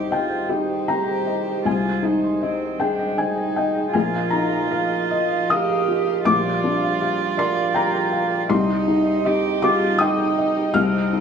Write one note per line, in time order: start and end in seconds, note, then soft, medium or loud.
0.00 1.62 C2 soft
0.00 3.90 D#3 soft
0.00 1.61 G3 soft
0.00 0.10 C4 medium
0.00 0.35 D#4 soft
0.00 0.14 G4 medium
0.00 0.68 G4 soft
0.00 2.79 C5 soft
0.00 3.90 C5 soft
0.00 0.11 D#5 medium
0.11 0.88 C4 medium
0.11 0.52 F4 medium
0.11 0.72 D#5 soft
0.11 0.84 G5 medium
0.49 0.90 D#4 soft
0.49 1.11 G4 soft
0.69 1.06 G4 soft
0.88 3.98 C4 medium
0.88 1.65 G4 medium
0.88 1.50 G5 soft
0.88 1.62 A#5 medium
1.08 1.45 G4 soft
1.26 1.65 D#5 soft
1.46 1.69 G4 soft
1.65 3.90 C2 soft
1.65 3.94 G#3 soft
1.65 2.06 F4 medium
1.65 2.42 G#4 medium
1.65 2.76 G#5 medium
1.85 5.75 D#6 soft
2.03 2.64 D#4 soft
2.03 2.44 D#4 medium
2.24 3.98 C6 soft
2.42 2.81 C4 medium
2.42 3.17 G#4 medium
2.42 3.03 D#5 soft
2.79 3.19 D4 medium
2.79 3.41 G#4 soft
2.79 3.98 C5 soft
2.79 3.15 G5 medium
2.99 3.36 D#5 soft
3.17 3.94 D#4 medium
3.17 3.98 G#4 medium
3.17 3.53 G#5 medium
3.38 3.74 D#5 soft
3.56 3.95 D#5 soft
3.56 3.92 G5 medium
3.75 5.09 D#5 soft
3.93 6.23 A#1 soft
3.93 6.27 F3 medium
3.93 5.53 F4 medium
3.93 8.51 F4 soft
3.93 4.69 A#4 medium
3.93 6.23 D#5 medium
3.93 4.29 G#5 medium
4.14 5.29 F5 soft
4.30 4.95 D#4 soft
4.30 5.46 A#5 medium
4.51 8.41 A#5 medium
4.71 5.49 A#4 medium
4.71 5.35 F5 soft
5.11 6.29 D#5 soft
5.11 5.74 D#5 soft
5.31 5.68 F5 medium
5.50 6.25 G4 medium
5.50 7.36 A#4 medium
5.50 6.12 F5 medium
5.50 6.22 D#6 medium
5.69 6.06 F5 medium
5.88 6.26 F4 soft
6.07 6.81 F5 medium
6.25 8.46 A#1 medium
6.25 10.75 G3 medium
6.25 8.46 F4 medium
6.25 6.99 G4 medium
6.25 8.50 D5 medium
6.25 7.34 D6 medium
6.45 7.55 D5 medium
6.64 7.23 D4 soft
6.82 8.53 F5 medium
7.01 7.73 G4 medium
7.01 7.61 F5 medium
7.37 8.53 A#4 medium
7.37 7.98 D5 medium
7.37 7.73 C6 medium
7.56 7.92 D5 medium
7.74 8.67 G4 medium
7.74 8.35 G5 medium
7.74 8.11 A#5 medium
7.93 8.30 D5 medium
8.12 8.50 F5 soft
8.31 8.53 D5 medium
8.49 10.71 C2 medium
8.49 9.24 C4 medium
8.49 9.27 D#4 medium
8.49 11.20 D#4 medium
8.49 11.20 D#5 medium
8.49 9.59 C6 medium
8.69 9.80 G4 medium
8.88 9.48 D#4 medium
9.07 11.20 C5 medium
9.25 9.99 C4 medium
9.25 9.65 G4 medium
9.25 9.85 D#5 medium
9.62 11.20 D#4 medium
9.62 10.03 F4 medium
9.62 10.23 G4 medium
9.62 9.98 D6 medium
9.81 10.18 G4 medium
9.99 11.20 C4 medium
9.99 10.77 D#4 medium
9.99 10.60 G5 medium
9.99 10.70 D#6 medium
10.19 10.55 G4 medium
10.38 10.76 D#5 soft
10.57 10.78 G4 medium
10.74 11.20 C2 medium
10.74 11.20 G#3 medium
10.74 11.20 C4 medium
10.74 11.20 F6 medium
11.13 11.20 D#4 soft